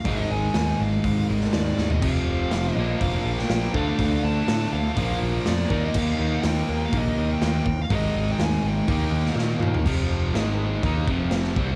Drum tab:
CC |----------------|x---------------|----------------|x---------------|
HH |o---o---o---o---|----o---o---o---|o---o---o---o---|----o---o---o---|
SD |----o------oo-o-|----o------oo---|----o-------o---|----o-------o---|
T2 |----------------|----------------|----------------|----------------|
FT |---------------o|----------------|----------------|----------------|
BD |o-------o-------|o-------o-----o-|o-------o-----o-|o-------o-----o-|

CC |----------------|x---x---x---x---|
HH |o---o---o-------|----------------|
SD |----o------oo---|----o-------oo--|
T2 |--------------o-|----------------|
FT |---------------o|----------------|
BD |o-------o-------|o-------o-o---o-|